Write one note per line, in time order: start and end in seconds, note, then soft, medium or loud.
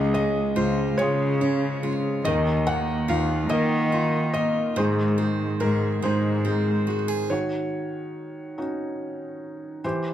0.00 0.41 C#2 medium
0.00 0.55 C#3 medium
0.00 0.98 G#3 medium
0.00 0.56 F4 soft
0.00 0.95 G#4 medium
0.00 0.12 D#5 medium
0.14 0.98 G#3 soft
0.14 1.40 C#4 medium
0.14 0.58 D#5 medium
0.56 0.91 C#2 medium
0.56 1.39 C#3 soft
0.56 1.82 F4 medium
0.56 0.95 C5 medium
0.97 2.01 C#3 medium
0.97 2.33 G#3 medium
0.97 1.81 G#3 soft
0.97 2.22 F4 medium
0.97 2.22 G#4 medium
0.97 1.89 C#5 medium
1.41 2.22 C#3 soft
1.41 2.33 C#4 soft
1.83 2.23 G#3 soft
1.83 2.33 F4 soft
2.25 2.92 D#2 medium
2.25 4.73 D#3 medium
2.25 4.75 D#3 medium
2.25 3.48 A#4 medium
2.25 2.64 D#5 medium
2.67 3.49 A#3 soft
2.67 3.92 D#4 medium
2.67 3.10 F#5 medium
3.08 3.43 D#2 medium
3.08 4.73 D#4 soft
3.08 4.33 F4 medium
3.08 3.48 F5 medium
3.49 4.53 D#3 medium
3.49 4.84 A#3 medium
3.49 4.34 A#3 soft
3.49 4.74 A#4 medium
3.49 4.30 D#5 medium
3.92 4.85 D#4 medium
3.92 4.74 F4 soft
4.33 4.76 A#3 soft
4.33 4.85 F4 soft
4.33 4.77 D#5 medium
4.76 5.45 G#2 medium
4.76 7.30 D#3 medium
4.76 5.17 G#3 medium
4.76 6.00 D#4 soft
4.76 6.00 G#4 soft
4.76 5.57 C5 medium
5.18 5.60 G#3 soft
5.18 6.43 C4 medium
5.60 5.95 G#2 medium
5.60 6.02 G#3 soft
5.60 6.86 G#4 medium
5.60 6.00 A#4 medium
6.02 7.06 G#2 medium
6.02 7.38 G#3 medium
6.02 6.45 G#3 soft
6.02 7.27 D#4 soft
6.02 7.27 G#4 medium
6.02 6.95 C5 medium
6.45 6.87 G#3 medium
6.45 7.38 C4 medium
6.87 7.29 G#3 soft
6.87 7.08 F#4 soft
7.08 7.38 G#4 soft
7.30 9.80 D#3 soft
7.30 8.57 F#4 soft
7.30 9.80 C#5 medium
8.58 9.80 C#4 soft
8.58 9.80 D#4 soft
8.58 9.81 F#4 soft
9.84 10.14 E3 soft
9.84 10.14 G4 soft
9.84 10.14 C5 medium